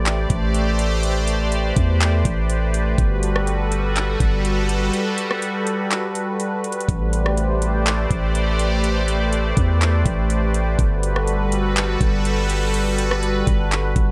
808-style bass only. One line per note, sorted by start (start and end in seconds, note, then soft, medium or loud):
0.00 0.26 A1 loud
0.30 1.72 A1 loud
1.77 2.23 E2 loud
2.25 2.95 A1 loud
2.98 4.16 G1 loud
4.20 4.91 G1 loud
6.89 8.07 A1 loud
8.11 9.53 A1 loud
9.57 10.04 E2 loud
10.06 10.76 A1 loud
10.79 11.97 G1 loud
12.01 13.43 G1 loud
13.47 13.94 G1 loud
13.96 14.12 G1 loud